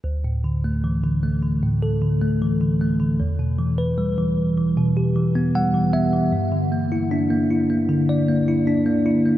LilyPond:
<<
  \new Staff \with { instrumentName = "Tine electric piano" } { \time 4/4 \key e \dorian \tempo 4 = 77 r1 | r2. fis''8 e''8 | r1 | }
  \new Staff \with { instrumentName = "Tine electric piano" } { \clef bass \time 4/4 \key e \dorian d,16 a,16 d16 a16 e16 d16 a16 d16 a,16 a'16 d16 a16 e16 d16 a16 d16 | e,16 b,16 e16 b'16 g16 e8 e16 b,16 g'16 e16 b16 g16 e16 b16 e16 | g,16 d16 bes16 e'16 d'16 bes16 e'16 bes16 d16 d''16 bes16 e'16 d'16 bes16 e'16 bes16 | }
>>